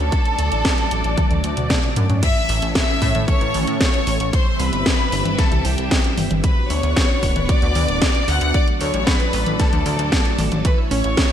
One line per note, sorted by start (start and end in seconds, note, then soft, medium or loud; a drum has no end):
0.00 0.11 D2 medium
0.00 0.10 B3 medium
0.00 0.10 C#4 medium
0.00 2.19 D4 medium
0.00 0.10 F#4 medium
0.00 1.66 A4 loud
0.00 0.10 C#5 medium
0.00 1.66 A5 medium
0.12 2.21 F#3 medium
0.12 2.21 A3 medium
0.12 2.21 A4 medium
0.12 2.21 D5 medium
0.12 kick loud
0.12 closed hi-hat medium
0.25 closed hi-hat soft
0.39 0.50 D2 medium
0.39 closed hi-hat medium
0.52 0.63 A1 medium
0.52 closed hi-hat medium
0.65 kick loud
0.65 snare loud
0.65 closed hi-hat medium
0.78 closed hi-hat soft
0.91 1.03 A1 medium
0.91 closed hi-hat medium
1.04 1.16 A1 medium
1.04 closed hi-hat medium
1.17 kick loud
1.17 closed hi-hat medium
1.17 high tom medium
1.31 1.42 D2 medium
1.31 closed hi-hat soft
1.31 high tom medium
1.44 1.55 D2 medium
1.44 closed hi-hat medium
1.57 1.68 D2 medium
1.57 closed hi-hat medium
1.57 mid tom medium
1.70 kick loud
1.70 snare loud
1.70 closed hi-hat medium
1.70 mid tom medium
1.83 closed hi-hat soft
1.96 2.08 F#2 medium
1.96 closed hi-hat medium
1.96 mid tom loud
2.10 2.21 F#2 medium
2.10 closed hi-hat medium
2.10 mid tom medium
2.23 6.40 E3 medium
2.23 4.31 A3 medium
2.23 4.31 C#4 medium
2.23 4.31 A4 medium
2.23 4.31 C#5 medium
2.23 2.72 E5 loud
2.23 2.72 E6 medium
2.23 kick loud
2.23 closed hi-hat medium
2.23 crash loud
2.49 2.60 A1 medium
2.49 open hi-hat loud
2.62 2.74 A1 medium
2.62 closed hi-hat medium
2.75 3.24 E5 loud
2.75 3.25 E6 medium
2.75 kick loud
2.75 snare loud
2.75 closed hi-hat medium
3.02 3.13 A2 loud
3.02 kick medium
3.02 open hi-hat loud
3.15 3.26 A2 medium
3.15 closed hi-hat medium
3.15 high tom medium
3.28 3.77 C#5 loud
3.28 3.77 C#6 medium
3.28 kick loud
3.28 closed hi-hat medium
3.41 3.53 A1 medium
3.41 closed hi-hat soft
3.54 3.66 A1 loud
3.54 open hi-hat loud
3.54 high tom medium
3.67 3.79 A2 medium
3.67 closed hi-hat medium
3.81 4.30 C#5 loud
3.81 4.30 C#6 medium
3.81 kick loud
3.81 snare loud
3.81 closed hi-hat medium
3.94 closed hi-hat soft
4.07 4.18 A1 loud
4.07 open hi-hat loud
4.20 4.32 A1 medium
4.20 closed hi-hat medium
4.33 6.42 G3 medium
4.33 6.42 C4 medium
4.33 6.42 G4 medium
4.33 4.60 C5 loud
4.33 6.42 E5 medium
4.33 4.60 C6 medium
4.33 kick loud
4.33 closed hi-hat medium
4.60 4.71 C2 medium
4.60 5.39 B4 loud
4.60 5.39 B5 medium
4.60 open hi-hat loud
4.73 4.84 G1 medium
4.73 closed hi-hat medium
4.86 kick loud
4.86 snare loud
4.86 closed hi-hat medium
5.12 5.24 G1 loud
5.12 open hi-hat loud
5.25 5.37 G1 medium
5.25 closed hi-hat medium
5.25 high tom medium
5.39 5.65 A4 medium
5.39 5.65 A5 medium
5.39 kick loud
5.39 snare soft
5.39 closed hi-hat medium
5.52 5.63 C2 medium
5.52 closed hi-hat soft
5.52 high tom medium
5.65 5.76 C2 medium
5.65 6.17 G4 medium
5.65 6.18 G5 medium
5.65 open hi-hat loud
5.78 5.89 C2 medium
5.78 closed hi-hat medium
5.91 kick loud
5.91 snare loud
5.91 closed hi-hat medium
6.04 closed hi-hat soft
6.17 6.29 G1 loud
6.17 open hi-hat loud
6.17 high tom medium
6.31 6.42 G1 medium
6.31 closed hi-hat medium
6.31 high tom medium
6.44 8.52 B3 medium
6.44 10.61 D4 medium
6.44 8.52 F#4 medium
6.44 8.52 B4 medium
6.44 6.68 B4 medium
6.44 6.69 B5 medium
6.44 kick loud
6.44 closed hi-hat medium
6.70 6.81 D2 medium
6.70 7.49 C#5 loud
6.70 7.49 C#6 medium
6.70 open hi-hat loud
6.83 6.95 D2 medium
6.83 closed hi-hat medium
6.96 kick loud
6.96 snare loud
6.96 closed hi-hat medium
7.23 7.34 D1 medium
7.23 kick medium
7.23 open hi-hat loud
7.36 7.47 D1 medium
7.36 closed hi-hat medium
7.36 high tom medium
7.49 8.28 D5 loud
7.49 8.28 D6 medium
7.49 kick loud
7.49 closed hi-hat medium
7.62 7.74 D2 medium
7.62 closed hi-hat soft
7.75 7.87 D2 loud
7.75 open hi-hat loud
7.75 high tom medium
7.88 8.00 D1 medium
7.88 closed hi-hat medium
8.02 kick loud
8.02 snare loud
8.02 closed hi-hat medium
8.15 closed hi-hat soft
8.28 8.39 D2 loud
8.28 8.54 F#5 loud
8.28 8.55 F#6 medium
8.28 open hi-hat loud
8.41 8.53 D2 medium
8.41 closed hi-hat medium
8.54 10.63 F#3 medium
8.54 11.32 A3 medium
8.54 11.32 A4 medium
8.54 10.63 D5 medium
8.54 8.66 D5 loud
8.54 8.67 D6 medium
8.54 kick loud
8.54 closed hi-hat medium
8.68 closed hi-hat soft
8.81 8.92 D2 medium
8.81 9.05 C#5 loud
8.81 9.06 C#6 medium
8.81 open hi-hat loud
8.94 9.05 A1 medium
8.94 closed hi-hat medium
9.07 9.60 B4 loud
9.07 9.60 B5 medium
9.07 kick loud
9.07 snare loud
9.07 closed hi-hat medium
9.20 closed hi-hat soft
9.33 9.45 A1 loud
9.33 open hi-hat loud
9.46 9.58 A1 medium
9.46 closed hi-hat medium
9.46 high tom medium
9.60 10.39 A4 medium
9.60 10.39 A5 medium
9.60 kick loud
9.60 snare soft
9.60 closed hi-hat medium
9.73 9.84 D2 medium
9.73 closed hi-hat soft
9.73 high tom medium
9.86 9.97 D2 medium
9.86 open hi-hat loud
9.99 10.11 D2 medium
9.99 closed hi-hat medium
10.12 kick loud
10.12 snare loud
10.12 closed hi-hat medium
10.25 closed hi-hat soft
10.39 10.50 A1 loud
10.39 open hi-hat loud
10.39 high tom medium
10.52 10.63 A1 medium
10.52 closed hi-hat medium
10.52 high tom medium
10.65 11.32 E3 medium
10.65 10.76 A3 medium
10.65 11.32 C#4 medium
10.65 10.77 B4 medium
10.65 11.32 C#5 medium
10.65 10.77 B5 medium
10.65 kick loud
10.65 closed hi-hat medium
10.78 10.90 E5 medium
10.91 11.03 A1 medium
10.91 11.03 C#4 loud
10.91 11.32 C#5 loud
10.91 11.32 C#6 medium
10.91 open hi-hat loud
11.04 11.16 A1 medium
11.04 11.17 C#5 medium
11.04 closed hi-hat medium
11.17 11.24 C#4 loud
11.17 kick loud
11.17 snare loud
11.17 closed hi-hat medium